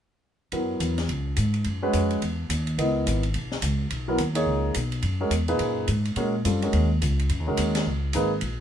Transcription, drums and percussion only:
0.52 ride soft
0.80 hi-hat pedal soft
0.80 ride soft
0.98 snare soft
0.98 ride soft
1.09 ride soft
1.37 hi-hat pedal soft
1.37 ride soft
1.54 ride soft
1.64 ride soft
1.93 hi-hat pedal soft
1.93 ride medium
2.11 ride soft
2.22 ride soft
2.50 hi-hat pedal medium
2.50 ride medium
2.67 ride soft
2.79 ride soft
3.07 hi-hat pedal medium
3.07 ride medium
3.23 ride soft
3.34 ride soft
3.52 snare soft
3.62 hi-hat pedal soft
3.62 ride medium
3.90 ride soft
4.18 hi-hat pedal soft
4.18 ride soft
4.35 ride medium
4.74 hi-hat pedal soft
4.74 ride medium
4.92 ride soft
5.02 ride soft
5.31 hi-hat pedal medium
5.31 ride medium
5.48 ride soft
5.59 ride soft
5.88 hi-hat pedal soft
5.88 ride medium
6.05 ride soft
6.16 ride soft
6.45 hi-hat pedal soft
6.45 ride medium
6.62 ride soft
6.73 ride soft
7.02 hi-hat pedal medium
7.02 ride medium
7.19 ride soft
7.29 ride soft
7.57 hi-hat pedal medium
7.57 ride medium
7.75 snare soft
7.75 ride medium
8.13 hi-hat pedal soft
8.13 ride medium
8.41 ride soft

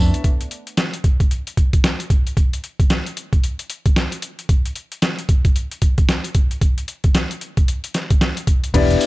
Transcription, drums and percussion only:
0.14 closed hi-hat medium
0.24 kick medium
0.24 closed hi-hat medium
0.41 closed hi-hat medium
0.51 closed hi-hat medium
0.67 closed hi-hat soft
0.77 snare loud
0.77 closed hi-hat medium
0.93 closed hi-hat medium
1.04 kick medium
1.04 closed hi-hat medium
1.20 kick medium
1.20 closed hi-hat soft
1.31 closed hi-hat medium
1.47 closed hi-hat medium
1.57 kick medium
1.57 closed hi-hat medium
1.73 kick medium
1.73 closed hi-hat medium
1.84 snare loud
1.84 closed hi-hat medium
2.00 closed hi-hat medium
2.10 kick medium
2.10 closed hi-hat medium
2.27 closed hi-hat soft
2.37 kick medium
2.37 closed hi-hat medium
2.53 closed hi-hat medium
2.64 closed hi-hat medium
2.80 kick medium
2.80 closed hi-hat soft
2.90 snare loud
2.90 closed hi-hat medium
3.06 closed hi-hat soft
3.17 closed hi-hat medium
3.33 kick medium
3.33 closed hi-hat soft
3.44 closed hi-hat medium
3.59 closed hi-hat medium
3.70 closed hi-hat medium
3.86 kick medium
3.86 closed hi-hat medium
3.96 snare loud
3.96 closed hi-hat medium
4.12 closed hi-hat medium
4.22 closed hi-hat medium
4.39 closed hi-hat soft
4.49 kick medium
4.49 closed hi-hat medium
4.66 closed hi-hat medium
4.76 closed hi-hat medium
4.92 closed hi-hat medium
5.02 snare loud
5.02 closed hi-hat medium
5.19 closed hi-hat medium
5.29 kick medium
5.29 closed hi-hat medium
5.45 kick medium
5.45 closed hi-hat soft
5.56 closed hi-hat medium
5.71 closed hi-hat medium
5.82 kick medium
5.82 closed hi-hat medium
5.98 kick medium
5.98 closed hi-hat medium
6.09 snare loud
6.09 closed hi-hat medium
6.24 closed hi-hat medium
6.35 kick medium
6.35 closed hi-hat medium
6.51 closed hi-hat soft
6.61 kick medium
6.61 closed hi-hat medium
6.78 closed hi-hat medium
6.88 closed hi-hat medium
7.04 kick medium
7.04 closed hi-hat medium
7.15 snare loud
7.15 closed hi-hat medium
7.31 closed hi-hat soft
7.41 closed hi-hat medium
7.57 kick medium
7.57 closed hi-hat soft
7.68 closed hi-hat medium
7.84 closed hi-hat medium
7.94 snare medium
7.94 closed hi-hat medium
8.10 kick medium
8.10 closed hi-hat medium
8.21 snare loud
8.21 closed hi-hat medium
8.37 closed hi-hat medium
8.47 kick medium
8.47 closed hi-hat medium
8.64 closed hi-hat medium
8.74 kick loud
8.74 closed hi-hat medium
8.74 crash loud
8.90 closed hi-hat medium
9.01 closed hi-hat medium
9.01 tambourine medium

